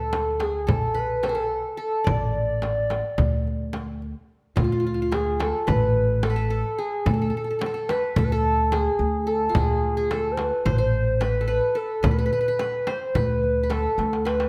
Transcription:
0.00 0.68 D2 medium
0.00 0.43 A4 medium
0.00 0.46 A4 medium
0.00 0.66 B4 medium
0.13 darbuka tek medium
0.13 frame drum medium
0.40 0.73 G#4 medium
0.40 0.72 G#4 medium
0.40 darbuka tek medium
0.40 frame drum medium
0.67 1.62 B1 medium
0.67 1.22 A4 medium
0.67 1.00 A4 medium
0.67 frame drum medium
0.67 darbuka dum medium
0.94 2.03 B4 medium
0.94 1.27 B4 medium
1.23 1.34 A4 medium
1.23 1.80 A4 medium
1.23 darbuka tek medium
1.23 frame drum medium
1.29 1.41 G#4 medium
1.35 1.77 A4 medium
1.77 2.94 A4 medium
1.77 2.10 A4 medium
2.04 3.01 A1 medium
2.04 3.96 D5 medium
2.04 4.02 D5 loud
2.04 frame drum medium
2.04 darbuka dum medium
2.21 darbuka ka soft
2.36 darbuka ka soft
2.62 darbuka tek medium
2.62 frame drum medium
2.90 darbuka tek medium
2.90 frame drum medium
3.18 4.12 D2 medium
3.18 frame drum medium
3.18 darbuka dum medium
3.47 darbuka ka soft
3.73 darbuka tek medium
3.73 frame drum medium
4.02 darbuka ka soft
4.56 5.51 D2 medium
4.56 4.64 F4 medium
4.56 5.15 F4 medium
4.56 frame drum medium
4.56 darbuka dum loud
4.64 4.72 F4 soft
4.71 4.79 F4 medium
4.71 darbuka ka soft
4.80 4.86 F4 soft
4.87 4.94 F4 medium
4.94 5.02 F4 soft
5.02 6.36 F4 medium
5.12 5.46 G#4 medium
5.12 5.44 G#4 medium
5.12 darbuka tek medium
5.12 frame drum medium
5.40 6.22 A4 medium
5.40 5.70 A4 medium
5.40 darbuka tek medium
5.40 frame drum medium
5.67 6.62 A1 medium
5.67 6.29 B4 medium
5.67 6.25 B4 medium
5.67 frame drum medium
5.67 darbuka dum medium
6.23 6.36 A4 medium
6.23 6.50 A4 medium
6.23 darbuka tek medium
6.23 frame drum medium
6.30 7.39 B4 medium
6.36 6.50 A4 medium
6.50 6.84 A4 medium
6.50 6.80 A4 medium
6.50 darbuka ka soft
6.78 7.08 G#4 medium
6.78 7.12 G#4 medium
7.06 7.29 D2 medium
7.06 7.90 A4 medium
7.06 7.13 A4 medium
7.06 frame drum medium
7.06 darbuka dum medium
7.14 7.21 A4 soft
7.21 7.29 A4 medium
7.21 darbuka ka soft
7.30 7.37 A4 soft
7.37 7.44 A4 soft
7.44 7.50 A4 soft
7.51 7.59 A4 soft
7.59 7.66 A4 soft
7.59 darbuka tek medium
7.59 frame drum medium
7.66 7.74 A4 medium
7.74 8.18 A4 medium
7.89 8.16 B4 medium
7.89 8.99 B4 medium
7.89 darbuka tek medium
7.89 frame drum medium
8.16 8.87 D2 medium
8.16 8.25 A4 medium
8.16 8.32 A4 medium
8.16 frame drum medium
8.16 darbuka dum medium
8.24 8.33 B4 medium
8.32 8.75 A4 medium
8.32 8.78 A4 medium
8.72 9.33 G#4 medium
8.72 9.30 G#4 loud
8.72 darbuka tek medium
8.72 frame drum medium
8.99 9.46 D2 medium
8.99 darbuka ka soft
9.27 9.62 A4 medium
9.27 9.57 A4 medium
9.49 10.83 F4 medium
9.55 10.49 D2 medium
9.55 10.12 G#4 loud
9.55 9.97 G#4 medium
9.55 frame drum loud
9.55 darbuka dum medium
9.69 darbuka ka soft
9.97 10.17 G#4 medium
10.10 10.33 A4 medium
10.10 11.28 A4 medium
10.10 darbuka tek medium
10.10 frame drum medium
10.32 10.40 C5 medium
10.37 10.67 B4 medium
10.37 darbuka tek medium
10.37 frame drum medium
10.65 11.59 A1 medium
10.65 10.78 C5 medium
10.65 10.73 C5 loud
10.65 frame drum medium
10.65 darbuka dum medium
10.72 10.81 B4 medium
10.78 11.27 C5 medium
10.78 11.22 C5 loud
11.20 11.48 B4 medium
11.20 11.47 B4 medium
11.20 darbuka tek medium
11.20 frame drum medium
11.41 11.75 A4 medium
11.48 12.02 B4 medium
11.48 11.78 B4 loud
11.48 darbuka ka soft
11.75 12.92 A4 medium
11.75 12.06 A4 medium
12.03 12.27 D2 medium
12.03 12.11 B4 medium
12.03 12.89 B4 loud
12.03 frame drum medium
12.03 darbuka dum loud
12.11 12.18 B4 medium
12.19 12.25 B4 medium
12.19 darbuka ka soft
12.26 12.32 B4 medium
12.32 12.40 B4 medium
12.32 darbuka ka soft
12.41 12.48 B4 medium
12.48 12.59 B4 medium
12.59 12.93 B4 medium
12.59 darbuka tek medium
12.59 frame drum medium
12.87 13.21 C5 medium
12.87 13.17 C5 medium
12.87 darbuka tek medium
12.87 frame drum medium
13.15 13.85 D2 medium
13.15 13.63 B4 medium
13.15 13.72 B4 loud
13.15 darbuka dum medium
13.15 frame drum medium
13.43 darbuka ka soft
13.63 14.25 B4 medium
13.70 14.49 A4 medium
13.70 14.28 A4 loud
13.70 darbuka tek medium
13.70 frame drum medium
13.98 14.45 D2 medium
13.98 darbuka tek medium
14.13 darbuka ka medium
14.25 14.49 B4 medium
14.25 darbuka tek medium
14.40 darbuka ka medium

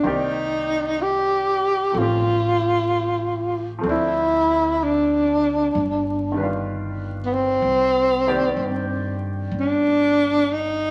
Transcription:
0.03 1.91 C2 medium
0.03 1.95 D#3 soft
0.03 1.95 A#3 soft
0.03 1.95 C4 soft
0.03 1.97 G4 medium
0.03 1.96 D5 soft
0.07 1.04 D#4 medium
1.02 2.00 G4 medium
1.92 3.80 A1 medium
1.92 3.77 F3 soft
1.92 3.80 A3 soft
1.97 3.82 C4 soft
1.97 3.86 C#4 soft
1.97 3.69 F4 medium
2.02 3.88 G4 soft
3.79 5.70 F3 soft
3.79 5.71 A3 soft
3.84 5.68 D2 medium
3.84 5.73 C4 soft
3.84 5.74 D4 soft
3.90 4.85 E4 medium
3.90 5.76 E4 soft
4.84 6.70 D4 medium
5.75 7.59 G1 medium
6.32 7.59 D#3 soft
6.32 7.60 G3 soft
6.37 7.63 D4 soft
6.37 7.62 B4 soft
6.43 7.65 F4 soft
7.25 7.35 B3 medium
7.33 9.21 C4 medium
7.62 8.52 C2 medium
8.27 10.91 D#3 soft
8.27 10.91 A#3 soft
8.27 10.91 C4 soft
8.27 10.91 G4 soft
8.27 10.91 D5 soft
8.57 9.46 G2 medium
9.52 10.91 G1 medium
9.60 10.54 D4 medium
10.53 10.91 D#4 medium

